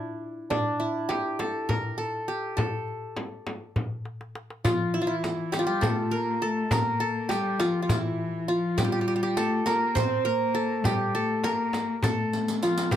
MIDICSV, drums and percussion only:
0, 0, Header, 1, 4, 480
1, 0, Start_track
1, 0, Tempo, 590551
1, 415, Time_signature, 7, 3, 24, 8
1, 10536, End_track
2, 0, Start_track
2, 0, Title_t, "Darbuka"
2, 416, Note_on_c, 9, 64, 70
2, 497, Note_off_c, 9, 64, 0
2, 655, Note_on_c, 9, 62, 22
2, 736, Note_off_c, 9, 62, 0
2, 900, Note_on_c, 9, 63, 62
2, 981, Note_off_c, 9, 63, 0
2, 1137, Note_on_c, 9, 63, 59
2, 1218, Note_off_c, 9, 63, 0
2, 1376, Note_on_c, 9, 64, 70
2, 1458, Note_off_c, 9, 64, 0
2, 2098, Note_on_c, 9, 64, 73
2, 2179, Note_off_c, 9, 64, 0
2, 2339, Note_on_c, 9, 62, 24
2, 2421, Note_off_c, 9, 62, 0
2, 2578, Note_on_c, 9, 63, 60
2, 2659, Note_off_c, 9, 63, 0
2, 2819, Note_on_c, 9, 63, 62
2, 2900, Note_off_c, 9, 63, 0
2, 3055, Note_on_c, 9, 64, 75
2, 3137, Note_off_c, 9, 64, 0
2, 3295, Note_on_c, 9, 63, 48
2, 3377, Note_off_c, 9, 63, 0
2, 3421, Note_on_c, 9, 62, 57
2, 3502, Note_off_c, 9, 62, 0
2, 3539, Note_on_c, 9, 63, 70
2, 3621, Note_off_c, 9, 63, 0
2, 3661, Note_on_c, 9, 62, 70
2, 3742, Note_off_c, 9, 62, 0
2, 3778, Note_on_c, 9, 64, 84
2, 3859, Note_off_c, 9, 64, 0
2, 4259, Note_on_c, 9, 63, 62
2, 4340, Note_off_c, 9, 63, 0
2, 4500, Note_on_c, 9, 63, 68
2, 4581, Note_off_c, 9, 63, 0
2, 4735, Note_on_c, 9, 64, 82
2, 4816, Note_off_c, 9, 64, 0
2, 5454, Note_on_c, 9, 64, 92
2, 5535, Note_off_c, 9, 64, 0
2, 5934, Note_on_c, 9, 63, 67
2, 6016, Note_off_c, 9, 63, 0
2, 6177, Note_on_c, 9, 63, 75
2, 6258, Note_off_c, 9, 63, 0
2, 6416, Note_on_c, 9, 64, 86
2, 6498, Note_off_c, 9, 64, 0
2, 7137, Note_on_c, 9, 64, 98
2, 7218, Note_off_c, 9, 64, 0
2, 7618, Note_on_c, 9, 63, 62
2, 7699, Note_off_c, 9, 63, 0
2, 7858, Note_on_c, 9, 63, 67
2, 7939, Note_off_c, 9, 63, 0
2, 8101, Note_on_c, 9, 64, 86
2, 8182, Note_off_c, 9, 64, 0
2, 8818, Note_on_c, 9, 64, 85
2, 8899, Note_off_c, 9, 64, 0
2, 9064, Note_on_c, 9, 62, 23
2, 9145, Note_off_c, 9, 62, 0
2, 9303, Note_on_c, 9, 63, 60
2, 9384, Note_off_c, 9, 63, 0
2, 9541, Note_on_c, 9, 63, 60
2, 9622, Note_off_c, 9, 63, 0
2, 9781, Note_on_c, 9, 64, 78
2, 9863, Note_off_c, 9, 64, 0
2, 10501, Note_on_c, 9, 64, 84
2, 10536, Note_off_c, 9, 64, 0
2, 10536, End_track
3, 0, Start_track
3, 0, Title_t, "Frame drum"
3, 412, Note_on_c, 9, 64, 78
3, 494, Note_off_c, 9, 64, 0
3, 894, Note_on_c, 9, 64, 62
3, 976, Note_off_c, 9, 64, 0
3, 1135, Note_on_c, 9, 64, 62
3, 1217, Note_off_c, 9, 64, 0
3, 1375, Note_on_c, 9, 64, 75
3, 1456, Note_off_c, 9, 64, 0
3, 2097, Note_on_c, 9, 64, 80
3, 2179, Note_off_c, 9, 64, 0
3, 2573, Note_on_c, 9, 64, 68
3, 2654, Note_off_c, 9, 64, 0
3, 2817, Note_on_c, 9, 64, 64
3, 2898, Note_off_c, 9, 64, 0
3, 3056, Note_on_c, 9, 64, 74
3, 3138, Note_off_c, 9, 64, 0
3, 3778, Note_on_c, 9, 64, 85
3, 3859, Note_off_c, 9, 64, 0
3, 4257, Note_on_c, 9, 64, 64
3, 4339, Note_off_c, 9, 64, 0
3, 4495, Note_on_c, 9, 64, 64
3, 4576, Note_off_c, 9, 64, 0
3, 4734, Note_on_c, 9, 64, 81
3, 4815, Note_off_c, 9, 64, 0
3, 5453, Note_on_c, 9, 64, 85
3, 5534, Note_off_c, 9, 64, 0
3, 5933, Note_on_c, 9, 64, 64
3, 6015, Note_off_c, 9, 64, 0
3, 6175, Note_on_c, 9, 64, 61
3, 6256, Note_off_c, 9, 64, 0
3, 6416, Note_on_c, 9, 64, 85
3, 6498, Note_off_c, 9, 64, 0
3, 7135, Note_on_c, 9, 64, 79
3, 7216, Note_off_c, 9, 64, 0
3, 7616, Note_on_c, 9, 64, 63
3, 7697, Note_off_c, 9, 64, 0
3, 7856, Note_on_c, 9, 64, 63
3, 7938, Note_off_c, 9, 64, 0
3, 8091, Note_on_c, 9, 64, 85
3, 8172, Note_off_c, 9, 64, 0
3, 8811, Note_on_c, 9, 64, 77
3, 8893, Note_off_c, 9, 64, 0
3, 9295, Note_on_c, 9, 64, 64
3, 9376, Note_off_c, 9, 64, 0
3, 9536, Note_on_c, 9, 64, 65
3, 9617, Note_off_c, 9, 64, 0
3, 9775, Note_on_c, 9, 64, 85
3, 9856, Note_off_c, 9, 64, 0
3, 10496, Note_on_c, 9, 64, 90
3, 10536, Note_off_c, 9, 64, 0
3, 10536, End_track
4, 0, Start_track
4, 0, Title_t, "Riq"
4, 3782, Note_on_c, 9, 54, 57
4, 3863, Note_off_c, 9, 54, 0
4, 4259, Note_on_c, 9, 54, 48
4, 4341, Note_off_c, 9, 54, 0
4, 4499, Note_on_c, 9, 54, 48
4, 4580, Note_off_c, 9, 54, 0
4, 4741, Note_on_c, 9, 54, 65
4, 4823, Note_off_c, 9, 54, 0
4, 5464, Note_on_c, 9, 54, 55
4, 5545, Note_off_c, 9, 54, 0
4, 5944, Note_on_c, 9, 54, 48
4, 6026, Note_off_c, 9, 54, 0
4, 6181, Note_on_c, 9, 54, 46
4, 6263, Note_off_c, 9, 54, 0
4, 6420, Note_on_c, 9, 54, 59
4, 6501, Note_off_c, 9, 54, 0
4, 7138, Note_on_c, 9, 54, 61
4, 7220, Note_off_c, 9, 54, 0
4, 7617, Note_on_c, 9, 54, 49
4, 7698, Note_off_c, 9, 54, 0
4, 7858, Note_on_c, 9, 54, 46
4, 7940, Note_off_c, 9, 54, 0
4, 8100, Note_on_c, 9, 54, 63
4, 8181, Note_off_c, 9, 54, 0
4, 8821, Note_on_c, 9, 54, 66
4, 8902, Note_off_c, 9, 54, 0
4, 9066, Note_on_c, 9, 54, 15
4, 9147, Note_off_c, 9, 54, 0
4, 9303, Note_on_c, 9, 54, 48
4, 9384, Note_off_c, 9, 54, 0
4, 9545, Note_on_c, 9, 54, 47
4, 9626, Note_off_c, 9, 54, 0
4, 9783, Note_on_c, 9, 54, 61
4, 9864, Note_off_c, 9, 54, 0
4, 10025, Note_on_c, 9, 54, 55
4, 10106, Note_off_c, 9, 54, 0
4, 10147, Note_on_c, 9, 54, 62
4, 10228, Note_off_c, 9, 54, 0
4, 10262, Note_on_c, 9, 54, 64
4, 10344, Note_off_c, 9, 54, 0
4, 10384, Note_on_c, 9, 54, 83
4, 10465, Note_off_c, 9, 54, 0
4, 10503, Note_on_c, 9, 54, 58
4, 10536, Note_off_c, 9, 54, 0
4, 10536, End_track
0, 0, End_of_file